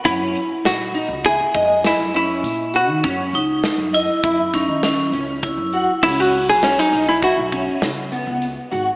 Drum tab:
CC |----------|----------|x---------|
HH |xxxxxxxxxx|xxxxxxxxxx|-xxxxxxxxx|
SD |--o---o---|--o--oo---|--o---o---|
BD |o---oo----|o---oo--o-|o---oo----|